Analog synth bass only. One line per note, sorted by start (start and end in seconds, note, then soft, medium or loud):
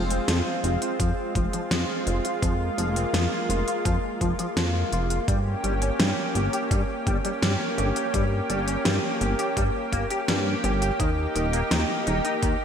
0.00 0.20 F1 medium
0.28 0.42 F2 medium
0.64 0.77 F1 medium
1.00 1.13 F2 medium
1.35 1.49 F1 medium
1.71 1.85 F2 loud
2.07 2.20 F1 loud
2.42 2.70 F2 loud
2.78 3.05 F1 medium
3.13 3.27 F2 medium
3.49 3.63 F1 loud
3.85 3.99 F2 loud
4.21 4.35 F1 medium
4.56 4.84 F2 loud
4.92 5.20 F1 medium
5.28 5.55 G2 loud
5.64 5.91 G1 medium
6.00 6.13 G2 medium
6.35 6.49 G1 loud
6.71 6.85 G2 medium
7.07 7.20 G1 medium
7.42 7.56 G2 medium
7.78 7.92 G1 loud
8.14 8.41 G2 loud
8.50 8.77 G1 medium
8.85 8.99 G2 medium
9.21 9.35 G1 loud
9.57 9.70 G2 loud
9.92 10.06 G1 medium
10.28 10.55 G2 loud
10.64 10.91 G1 medium
11.00 11.27 D#2 loud
11.35 11.63 D#1 medium
11.71 11.85 D#2 medium
12.07 12.21 D#1 loud
12.43 12.56 D#2 medium